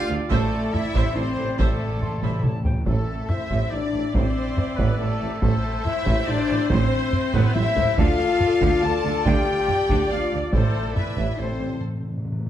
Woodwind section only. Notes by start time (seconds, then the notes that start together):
Already playing: D4 F4 A4 D5
0.29 C4 E4
2.86 C4 E4 A4 E5
7.96 D4 F4 A4 D5
10.52 C4 E4